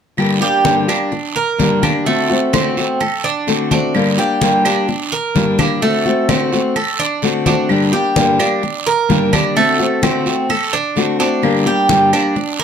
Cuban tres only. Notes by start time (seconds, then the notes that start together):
0.42 G4
0.89 D4
1.36 A#4
1.83 D4
2.06 A3
2.53 C4
3.00 A4
3.24 D4
3.71 D4
4.18 G4
4.66 D4
5.12 A#4
5.59 D4
5.82 A3
6.29 C4
6.76 A4
6.99 D4
7.46 D4
7.93 G4
8.40 D4
8.87 A#4
9.33 D4
9.57 A3
10.03 C4
10.50 A4
10.73 D4
11.20 D4
11.67 G4
12.13 D4
12.59 A#4